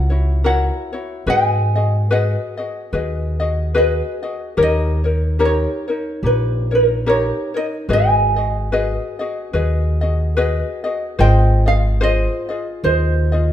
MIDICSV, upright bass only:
0, 0, Header, 1, 2, 480
1, 0, Start_track
1, 0, Key_signature, 5, "minor"
1, 0, Tempo, 826446
1, 741, Time_signature, 4, 2, 24, 8
1, 7856, End_track
2, 0, Start_track
2, 0, Title_t, "Upright bass"
2, 0, Program_c, 0, 32
2, 0, Note_on_c, 0, 37, 87
2, 401, Note_off_c, 0, 37, 0
2, 735, Note_on_c, 0, 44, 92
2, 1361, Note_off_c, 0, 44, 0
2, 1700, Note_on_c, 0, 39, 88
2, 2324, Note_off_c, 0, 39, 0
2, 2657, Note_on_c, 0, 39, 92
2, 3282, Note_off_c, 0, 39, 0
2, 3617, Note_on_c, 0, 34, 88
2, 4241, Note_off_c, 0, 34, 0
2, 4581, Note_on_c, 0, 32, 90
2, 5204, Note_off_c, 0, 32, 0
2, 5539, Note_on_c, 0, 39, 87
2, 6162, Note_off_c, 0, 39, 0
2, 6499, Note_on_c, 0, 32, 94
2, 7122, Note_off_c, 0, 32, 0
2, 7455, Note_on_c, 0, 39, 95
2, 7856, Note_off_c, 0, 39, 0
2, 7856, End_track
0, 0, End_of_file